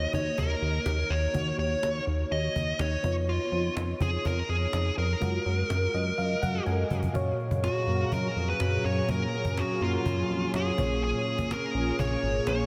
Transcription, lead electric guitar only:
0, 0, Header, 1, 2, 480
1, 0, Start_track
1, 0, Tempo, 483871
1, 1334, Time_signature, 4, 2, 24, 8
1, 12559, End_track
2, 0, Start_track
2, 0, Title_t, "Lead electric guitar"
2, 0, Program_c, 0, 29
2, 0, Note_on_c, 0, 75, 95
2, 101, Note_off_c, 0, 75, 0
2, 145, Note_on_c, 0, 73, 83
2, 363, Note_off_c, 0, 73, 0
2, 385, Note_on_c, 0, 70, 82
2, 1095, Note_on_c, 0, 73, 89
2, 1121, Note_off_c, 0, 70, 0
2, 1541, Note_off_c, 0, 73, 0
2, 1579, Note_on_c, 0, 73, 80
2, 2023, Note_off_c, 0, 73, 0
2, 2300, Note_on_c, 0, 75, 93
2, 2782, Note_off_c, 0, 75, 0
2, 2786, Note_on_c, 0, 73, 91
2, 3115, Note_off_c, 0, 73, 0
2, 3266, Note_on_c, 0, 65, 71
2, 3707, Note_off_c, 0, 65, 0
2, 3992, Note_on_c, 0, 68, 82
2, 4224, Note_on_c, 0, 70, 98
2, 4230, Note_off_c, 0, 68, 0
2, 4442, Note_off_c, 0, 70, 0
2, 4459, Note_on_c, 0, 68, 89
2, 4903, Note_off_c, 0, 68, 0
2, 4943, Note_on_c, 0, 70, 88
2, 6579, Note_off_c, 0, 70, 0
2, 7576, Note_on_c, 0, 66, 87
2, 8061, Note_on_c, 0, 70, 93
2, 8070, Note_off_c, 0, 66, 0
2, 8423, Note_off_c, 0, 70, 0
2, 8427, Note_on_c, 0, 71, 98
2, 8782, Note_off_c, 0, 71, 0
2, 8786, Note_on_c, 0, 73, 96
2, 9027, Note_off_c, 0, 73, 0
2, 9033, Note_on_c, 0, 70, 96
2, 9507, Note_on_c, 0, 66, 92
2, 9517, Note_off_c, 0, 70, 0
2, 9748, Note_off_c, 0, 66, 0
2, 9756, Note_on_c, 0, 65, 85
2, 10425, Note_off_c, 0, 65, 0
2, 10475, Note_on_c, 0, 68, 96
2, 10938, Note_off_c, 0, 68, 0
2, 10950, Note_on_c, 0, 68, 97
2, 11430, Note_on_c, 0, 70, 96
2, 11436, Note_off_c, 0, 68, 0
2, 11903, Note_off_c, 0, 70, 0
2, 11907, Note_on_c, 0, 73, 99
2, 12376, Note_off_c, 0, 73, 0
2, 12388, Note_on_c, 0, 73, 99
2, 12559, Note_off_c, 0, 73, 0
2, 12559, End_track
0, 0, End_of_file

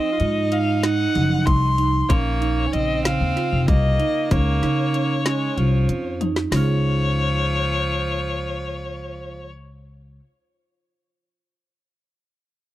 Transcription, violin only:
0, 0, Header, 1, 2, 480
1, 0, Start_track
1, 0, Key_signature, -5, "major"
1, 0, Tempo, 631579
1, 1598, Time_signature, 7, 3, 24, 8
1, 9682, End_track
2, 0, Start_track
2, 0, Title_t, "Violin"
2, 0, Program_c, 0, 40
2, 0, Note_on_c, 0, 75, 98
2, 393, Note_on_c, 0, 77, 91
2, 404, Note_off_c, 0, 75, 0
2, 627, Note_on_c, 0, 78, 104
2, 638, Note_off_c, 0, 77, 0
2, 1109, Note_on_c, 0, 84, 105
2, 1121, Note_off_c, 0, 78, 0
2, 1588, Note_on_c, 0, 73, 92
2, 1599, Note_off_c, 0, 84, 0
2, 2073, Note_on_c, 0, 75, 98
2, 2084, Note_off_c, 0, 73, 0
2, 2306, Note_off_c, 0, 75, 0
2, 2311, Note_on_c, 0, 77, 85
2, 2764, Note_off_c, 0, 77, 0
2, 2795, Note_on_c, 0, 75, 97
2, 3280, Note_on_c, 0, 73, 86
2, 3291, Note_off_c, 0, 75, 0
2, 4718, Note_off_c, 0, 73, 0
2, 4958, Note_on_c, 0, 73, 96
2, 7214, Note_off_c, 0, 73, 0
2, 9682, End_track
0, 0, End_of_file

